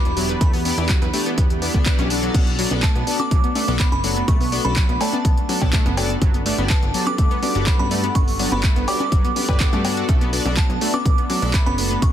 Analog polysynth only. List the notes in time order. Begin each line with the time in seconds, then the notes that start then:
0.17 B3 D4 E4 G4 D5
0.65 B3 D4 E4 G4 D5
0.78 B3 D4 E4 G4 D5
1.14 B3 D4 E4 G4 D5
1.62 B3 D4 E4 G4 D5
1.74 B3 D4 E4 G4 D5
2.10 B3 D4 F#4 A4 D5
2.59 B3 D4 F#4 A4 D5
2.71 B3 D4 F#4 A4 D5
3.07 B3 D4 F#4 A4 D5
3.55 B3 D4 F#4 A4 D5
3.68 B3 D4 F#4 A4 D5
4.04 B3 D4 F#4 A4 D5
4.52 B3 D4 F#4 A4 D5
4.65 B3 D4 F#4 A4 D5
5.01 B3 D4 F#4 A4 D5
5.49 B3 D4 F#4 A4 D5
5.62 B3 D4 F#4 A4 D5
5.97 B3 D4 F#4 A4 D5
6.46 B3 D4 F#4 G4 D5
6.58 B3 D4 F#4 G4 D5
6.94 B3 D4 F#4 G4 D5
7.43 B3 D4 F#4 G4 D5
7.55 B3 D4 F#4 G4 D5
7.91 B3 D4 F#4 G4 D5
8.39 B3 D4 F#4 G4 D5
8.52 B3 D4 F#4 G4 D5
8.88 B3 D4 F#4 G4 D5
9.36 B3 D4 F#4 G4 D5
9.49 B3 D4 F#4 G4 D5
9.85 B3 D4 F#4 A4 D5
10.33 B3 D4 F#4 A4 D5
10.45 B3 D4 F#4 A4 D5
10.81 B3 D4 F#4 A4 D5
11.30 B3 D4 F#4 A4 D5
11.42 B3 D4 F#4 A4 D5
11.78 B3 D4 F#4 A4 D5